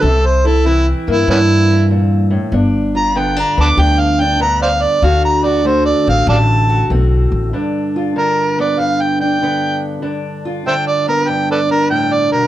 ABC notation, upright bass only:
X:1
M:4/4
L:1/8
Q:"Swing" 1/4=96
K:Gmix
V:1 name="Upright bass" clef=bass
C,,3 G,, G,,4 | G,,,3 D,, D,,4 | D,,3 A,,, A,,,2 B,,, A,,, | z8 |
z8 |]